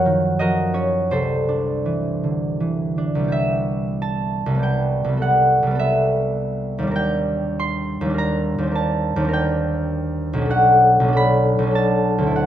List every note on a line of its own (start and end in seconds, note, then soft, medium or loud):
0.00 1.14 F#2 medium
0.00 0.39 F3 medium
0.00 1.14 F#3 medium
0.00 0.73 C#4 medium
0.00 0.39 F#4 medium
0.00 0.40 A#4 medium
0.00 0.73 C#5 medium
0.00 1.13 F#5 medium
0.06 0.64 D#3 soft
0.39 1.14 F3 soft
0.39 1.14 F#4 medium
0.39 1.15 A#4 medium
0.39 1.00 D#5 medium
0.74 1.14 C#4 soft
0.74 1.14 C#5 medium
1.11 3.14 C2 soft
1.11 3.27 G4 soft
1.11 3.36 A4 medium
1.11 5.01 C5 medium
1.49 2.97 D4 soft
1.86 2.59 E3 soft
2.24 2.87 D3 soft
2.60 3.35 E3 soft
2.98 3.35 D4 soft
3.15 4.45 C2 soft
3.19 4.49 G3 soft
3.24 4.53 B3 soft
3.24 4.58 G4 soft
3.32 5.78 E5 medium
4.02 5.04 A5 medium
4.46 5.03 C2 medium
4.50 5.07 G3 soft
4.55 5.12 B3 soft
4.59 8.49 G4 soft
4.59 6.94 G5 medium
5.04 5.61 C2 soft
5.08 5.66 G3 soft
5.13 5.70 B3 soft
5.17 5.74 A4 soft
5.22 6.20 F#5 medium
5.63 6.90 C2 medium
5.67 6.81 G3 medium
5.71 6.94 B3 medium
5.75 6.96 A4 soft
5.79 6.98 E5 medium
6.79 8.00 D#2 medium
6.83 8.04 G3 soft
6.87 8.08 D4 soft
6.87 8.13 A#4 medium
6.96 9.32 G5 medium
7.60 8.58 C6 loud
8.01 8.57 D#2 medium
8.05 10.47 G3 soft
8.10 8.66 D4 medium
8.14 8.70 A#4 soft
8.18 10.53 A#5 medium
8.58 9.15 D#2 medium
8.63 9.19 C4 medium
8.67 9.23 D4 soft
8.71 9.27 A#4 soft
8.71 9.73 A5 medium
9.16 10.44 D#2 medium
9.16 10.46 C4 medium
9.24 10.40 D4 medium
9.28 10.50 A#4 medium
9.33 10.53 G5 medium
10.33 10.99 B1 medium
10.33 11.03 C#4 soft
10.41 11.07 D4 soft
10.41 11.12 A4 soft
10.50 12.35 F#5 medium
11.00 11.57 B1 medium
11.04 11.61 C#4 medium
11.08 11.66 D4 medium
11.13 11.70 A4 medium
11.13 12.39 B5 loud
11.59 12.31 B1 medium
11.59 12.33 C#4 soft
11.67 12.46 D4 soft
11.71 12.30 A4 soft
11.75 12.46 A5 loud
12.18 12.46 D2 medium
12.23 12.46 C4 soft
12.27 12.46 E4 soft
12.31 12.46 A4 soft
12.36 12.46 F#5 medium